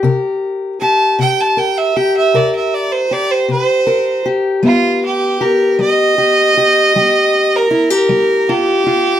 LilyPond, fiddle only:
\new Staff \with { instrumentName = "Fiddle" } { \time 12/8 \key g \dorian \tempo 4. = 52 r4 a''8 g''16 a''16 g''16 e''16 g''16 e''16 d''16 e''16 d''16 c''16 d''16 c''16 c''4 r8 | f'8 g'8 bes'8 ees''2~ ees''16 bes'8 bes'8. g'4 | }